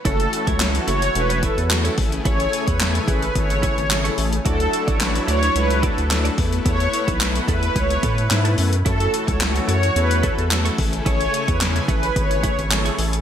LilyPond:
<<
  \new Staff \with { instrumentName = "Supersaw synth" } { \time 4/4 \key fis \minor \tempo 4 = 109 a'8 r16 cis''16 r8 cis''8 b'8 a'16 r4 r16 | cis''8 r16 b'16 r8 b'8 cis''8 cis''16 r4 r16 | a'8 r16 cis''16 r8 cis''8 b'8 a'16 r4 r16 | cis''8 r16 b'16 r8 b'8 cis''8 b'16 r4 r16 |
a'8 r16 cis''16 r8 cis''8 b'8 a'16 r4 r16 | cis''8 r16 b'16 r8 b'8 cis''8 cis''16 r4 r16 | }
  \new Staff \with { instrumentName = "Clean electric guitar" } { \time 4/4 \key fis \minor <e' a' cis''>16 r8 <e' a' cis''>16 r8 <e' a' cis''>16 <e' a' cis''>16 r16 <e' a' cis''>16 <e' a' cis''>16 r8 <e' a' cis''>16 r8 | <e' gis' cis''>16 r8 <e' gis' cis''>16 r8 <e' gis' cis''>16 <e' gis' cis''>16 r8 <e' gis' cis''>16 r8 <e' gis' cis''>16 r8 | <e' fis' d''>16 r8 <e' fis' d''>16 r8 <e' fis' d''>16 <e' d''>16 r8 <e' fis' d''>16 r8 <e' fis' d''>16 r8 | <b e' a'>16 r8 <b e' a'>16 r8 <b e' a'>16 <b e' a'>16 r8 <b e' a'>16 r8 <b e' a'>16 r8 |
<e' a' cis''>16 r8 <e' a' cis''>16 r8 <e' a' cis''>16 <e' a' cis''>16 r8 <e' a' cis''>16 r8 <e' a' cis''>16 r8 | <e' gis' cis''>16 r8 <e' gis' cis''>16 r8 <e' gis' cis''>16 <e' gis' cis''>16 r8 <e' gis' cis''>16 r8 <e' gis' cis''>16 r8 | }
  \new Staff \with { instrumentName = "Analog polysynth" } { \time 4/4 \key fis \minor <a cis' e' fis' a'>4 <a cis' e' fis' a'>4 <a cis' e' fis' a'>4 <a cis' e' fis' a'>8 <a cis' e' gis' a'>8~ | <a cis' e' gis' a'>8 r8 <a cis' e' gis' a'>4 <a cis' e' gis' a'>4 <a cis' e' gis' a'>4 | <a d' e' fis' a'>4 <a d' e' fis' b'>4 <a d' e' fis' a'>4 <a d' e' fis' a'>8 <a b e' a' b'>8~ | <a b e' a' b'>8 r8 <a b e' a' b'>4 <a b e' a' b'>4 <a b e' a' b'>4 |
<a cis' e' fis' a'>4 <a cis' e' fis' a'>4 <a cis' e' fis' a'>4 <a cis' e' fis' a'>8 <a cis' e' gis' a'>8~ | <a cis' e' gis' a'>8 r8 <a cis' e' gis' a'>4 <a cis' e' gis' b'>4 <a cis' e' gis' a'>4 | }
  \new Staff \with { instrumentName = "Analog synth pad" } { \time 4/4 \key fis \minor << { <e fis'>2.~ <e fis'>8 <cis gis''>8~ | <cis gis''>1 | <d' e'>2.~ <d' e'>8 <b, e'>8~ | <b, e'>1 |
<e fis'>2.~ <e fis'>8 <cis gis''>8~ | <cis gis''>1 | } \\ { a2.~ a8 a8~ | a1 | fis2.~ fis8 a8~ | a1 |
a1~ | a1 | } >> }
  \new Staff \with { instrumentName = "Analog synth bass" } { \clef bass \time 4/4 \key fis \minor fis,,8 r16 cis,8. fis,,8 e,,8. e,8. a,,8 | a,,8 r16 e,8. a,,8 gis,,8. gis,,8. a,,8 | d,8 r16 a,,8. d,8 cis,8. d,8. e,8 | e,8 r16 b,,8. e,8 cis,8 a,8 gis,8 fis,8 |
fis,8 r16 cis,8. fis,8 e,8. e,8. a,,8 | a,,8 r16 e,8. a,,8 gis,,8. gis,,8. a,,8 | }
  \new DrumStaff \with { instrumentName = "Drums" } \drummode { \time 4/4 <hh bd>16 hh16 hh16 <hh bd>16 <hc hh sn>16 hh16 hh16 hh16 hh16 hh16 <hh bd>16 hh16 <hc hh sn>16 hh16 <hho bd>16 hh16 | <hh bd>16 hh16 hh16 <hh bd>16 <hc hh sn>16 hh16 <hh bd>16 hh16 <hh bd>16 hh16 <hh bd>16 hh16 <hc hh sn>16 hh16 hho16 hh16 | <hh bd>16 hh16 hh16 <hh bd>16 <hc hh sn>16 hh16 hh16 hh16 hh16 hh16 <hh bd>16 hh16 <hc hh sn>16 hh16 <hho bd>16 hh16 | <hh bd>16 hh16 hh16 <hh bd>16 <hc hh sn>16 hh16 <hh bd>16 hh16 <hh bd>16 hh16 <hh bd>16 hh16 <hc hh sn>16 hh16 hho16 hh16 |
<hh bd>16 hh16 hh16 <hh bd>16 <hc hh sn>16 hh16 hh16 hh16 hh16 hh16 <hh bd>16 hh16 <hc hh sn>16 hh16 <hho bd>16 hh16 | <hh bd>16 hh16 hh16 <hh bd>16 <hc hh sn>16 hh16 <hh bd>16 hh16 <hh bd>16 hh16 <hh bd>16 hh16 <hc hh sn>16 hh16 hho16 hh16 | }
>>